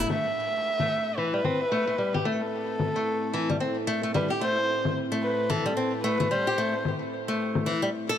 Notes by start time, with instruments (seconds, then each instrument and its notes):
Already playing: ambient pad A2 A3 D4 A4
0.09 nylon-string guitar A3, kamancheh E5, low conga, shaker
0.27 ambient pad C4, shaker
0.53 shaker
0.80 nylon-string guitar A3, low conga, shaker
1.11 ambient pad E4
1.18 nylon-string guitar E3, kamancheh B4
1.33 nylon-string guitar G3
1.45 nylon-string guitar C4, low conga
1.61 shaker
1.72 nylon-string guitar A3
1.82 ambient pad A4
1.87 nylon-string guitar A3, shaker
1.98 nylon-string guitar G3
2.14 nylon-string guitar G4, low conga, shaker
2.25 nylon-string guitar A3, kamancheh A4, shaker
2.42 shaker
2.69 shaker
2.80 low conga, shaker
2.96 nylon-string guitar A3
3.24 shaker
3.33 nylon-string guitar E3
3.49 nylon-string guitar G3, low conga, shaker
3.60 nylon-string guitar C4
3.78 shaker
3.87 nylon-string guitar A3
4.03 nylon-string guitar A3, shaker
4.14 nylon-string guitar G3, kamancheh B4, low conga
4.30 nylon-string guitar G4
4.41 nylon-string guitar A3, kamancheh C5
4.59 shaker
4.85 low conga, shaker
4.97 shaker
5.12 nylon-string guitar A3
5.23 kamancheh B4
5.40 shaker
5.50 nylon-string guitar E3, kamancheh A4, low conga, shaker
5.66 nylon-string guitar G3, shaker
5.77 nylon-string guitar C4
5.94 shaker
6.04 nylon-string guitar A3, kamancheh B4
6.20 nylon-string guitar A3, low conga, shaker
6.31 nylon-string guitar G3, kamancheh C5
6.47 nylon-string guitar G4, shaker
6.58 nylon-string guitar A3
6.75 shaker
6.85 low conga
7.02 shaker
7.13 shaker
7.28 nylon-string guitar A3, shaker
7.55 low conga, shaker
7.66 nylon-string guitar E3, shaker
7.82 nylon-string guitar G3
8.09 nylon-string guitar A4, shaker